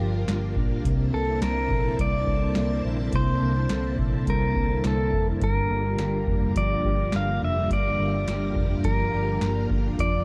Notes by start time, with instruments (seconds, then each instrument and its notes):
Already playing: clean electric guitar G2 F3 A#3 D4, string machine F3 A#3 D4 F4 A#4, pedal steel guitar G4
0.00 fingered electric bass G1, clean electric guitar G4
0.28 fingered electric bass G1, clean electric guitar A#3, snare, closed hi-hat
0.56 fingered electric bass A#1, clean electric guitar D4, kick
0.85 fingered electric bass C2, clean electric guitar C3, string machine D3 C4 E4 A5, kick, closed hi-hat
1.13 fingered electric bass C2, clean electric guitar A#3, pedal steel guitar A4
1.42 fingered electric bass C2, pedal steel guitar A#4, snare, closed hi-hat
1.71 fingered electric bass A#1, clean electric guitar E4, kick
1.99 fingered electric bass C2, clean electric guitar G3, pedal steel guitar D5, kick, closed hi-hat
2.27 fingered electric bass C2, clean electric guitar A4, kick
2.55 fingered electric bass C2, clean electric guitar A#3, snare, closed hi-hat
2.85 fingered electric bass A#1, clean electric guitar E4
3.13 fingered electric bass C2, clean electric guitar C3, pedal steel guitar C5, kick, closed hi-hat
3.41 fingered electric bass C2, clean electric guitar A#3
3.69 fingered electric bass C2, clean electric guitar A4, snare, closed hi-hat
3.99 fingered electric bass A#1, clean electric guitar E4, kick
4.27 fingered electric bass C2, clean electric guitar G3, pedal steel guitar A#4, kick, closed hi-hat
4.56 fingered electric bass C2, clean electric guitar A4, kick
4.84 fingered electric bass C2, clean electric guitar A#3, pedal steel guitar A4, snare, closed hi-hat
5.13 fingered electric bass F1, clean electric guitar E4, kick
5.42 fingered electric bass G1, clean electric guitar G2, string machine G3 F4 A#4, pedal steel guitar A#4, kick, closed hi-hat
5.70 fingered electric bass G1, clean electric guitar A#3
5.99 fingered electric bass G1, clean electric guitar G4, snare, closed hi-hat
6.28 fingered electric bass F1, clean electric guitar D4, kick
6.56 fingered electric bass G1, clean electric guitar F3, pedal steel guitar D5, kick, closed hi-hat
6.85 fingered electric bass G1, clean electric guitar G4, kick
7.12 fingered electric bass G1, clean electric guitar A#3, pedal steel guitar F5, snare, closed hi-hat
7.42 fingered electric bass F1, clean electric guitar D4, pedal steel guitar E5
7.71 fingered electric bass G1, clean electric guitar G2, pedal steel guitar D5, kick, closed hi-hat
8.00 fingered electric bass G1, clean electric guitar A#3
8.28 fingered electric bass G1, clean electric guitar G4, snare, closed hi-hat
8.56 fingered electric bass F1, clean electric guitar D4, kick
8.84 fingered electric bass G1, clean electric guitar F3, pedal steel guitar A#4, kick, closed hi-hat
9.13 fingered electric bass G1, clean electric guitar G4
9.41 fingered electric bass G1, clean electric guitar A#3, snare, closed hi-hat
9.71 fingered electric bass G1, clean electric guitar D4, kick
9.98 fingered electric bass F1, clean electric guitar F3, string machine A3 C4 A4, pedal steel guitar D5, kick, closed hi-hat